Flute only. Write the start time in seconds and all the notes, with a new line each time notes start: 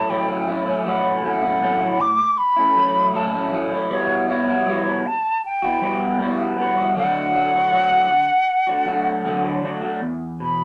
Already playing: A5
0.10 G5
0.88 F#5
1.29 F#5
2.01 D6
2.38 B5
3.16 A5
3.91 C#5
4.29 C#5
5.07 A5
5.45 G5
6.59 F#5
6.98 F#5
10.42 B5